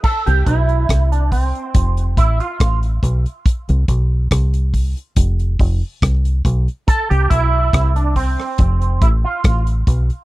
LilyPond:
<<
  \new Staff \with { instrumentName = "Clean electric guitar" } { \time 4/4 \key a \minor \tempo 4 = 70 a'16 g'16 e'8. d'16 c'4 e'16 f'8 r8. | r1 | a'16 g'16 e'8. d'16 c'4 e'16 f'8 r8. | }
  \new Staff \with { instrumentName = "Fingered electric bass" } { \clef bass \time 4/4 \key a \minor r16 c,16 b,,8 c,8. r16 f,,8 a,,16 r16 a,,8 b,,16 r16 | r16 c,16 b,,8 c,8. r16 f,,8 f,,16 r16 c,8 b,,16 r16 | r16 c,16 b,,8 c,8. r16 f,,8 a,,16 r16 a,,8 b,,16 r16 | }
  \new DrumStaff \with { instrumentName = "Drums" } \drummode { \time 4/4 <cymc bd>16 hh16 <hh bd>16 hh16 <hh bd ss>16 hh16 <hho bd>16 hh16 <hh bd>16 hh16 <hh bd>16 hh16 <hh bd ss>16 hh16 <hh bd>16 hh16 | <hh bd>16 hh16 <hh bd>8 <hh bd ss>16 hh16 <hho bd>16 hh16 <hh bd>16 hh16 <hho bd>8 <hh bd ss>16 hh16 <hh bd>16 hh16 | <hh bd>16 hh16 <hh bd>8 <hh bd ss>16 hh16 <hho bd>16 ss16 <hh bd>16 hh16 <hh bd>8 <hh bd ss>16 hh16 <hh bd>16 hh16 | }
>>